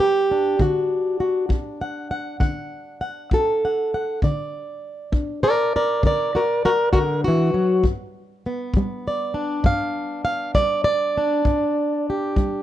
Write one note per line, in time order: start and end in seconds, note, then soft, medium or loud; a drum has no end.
0.00 0.23 G3 medium
0.00 0.61 B3 soft
0.00 0.60 G4 medium
0.31 4.23 D4 soft
0.59 1.14 D3 medium
0.59 1.20 F#4 soft
0.59 kick medium
1.20 1.49 F#4 soft
1.49 2.04 F#4 medium
1.49 kick medium
1.81 2.11 F#5 soft
2.11 2.40 F#5 soft
2.40 2.95 D3 medium
2.40 3.00 F#5 soft
2.40 kick medium
3.01 3.61 F#5 soft
3.31 3.87 F#4 medium
3.31 4.20 A4 soft
3.31 kick medium
3.65 3.93 F#5 soft
3.94 4.20 F#5 soft
4.22 4.77 D3 medium
4.22 5.43 D5 soft
4.22 kick medium
5.12 5.67 D4 medium
5.12 kick medium
5.43 5.74 A#4 medium
5.43 5.73 D5 medium
5.76 6.04 A#4 medium
5.76 6.05 D5 medium
6.03 6.58 D3 medium
6.03 6.35 A#4 medium
6.03 6.96 D5 medium
6.03 kick medium
6.35 6.39 F#4 medium
6.35 6.64 A#4 medium
6.65 6.69 F#4 medium
6.65 6.92 A#4 medium
6.93 7.24 D3 medium
6.93 6.98 F#4 medium
6.93 7.24 A#4 medium
6.93 kick medium
7.24 7.54 E3 medium
7.24 7.85 F#4 loud
7.54 7.84 F#3 medium
7.83 8.39 G2 medium
7.83 kick medium
8.46 12.63 B3 soft
8.74 9.30 G3 medium
8.74 kick medium
9.08 9.66 D5 soft
9.34 11.17 D4 soft
9.64 10.19 G2 medium
9.64 10.23 F5 medium
9.64 kick medium
10.25 10.54 F5 medium
10.55 11.10 G3 medium
10.55 10.83 D5 medium
10.55 kick medium
10.84 12.06 D5 loud
11.18 12.63 D4 soft
11.45 12.01 G2 medium
11.45 kick medium
12.10 12.63 G4 soft
12.36 12.63 G3 medium
12.36 kick medium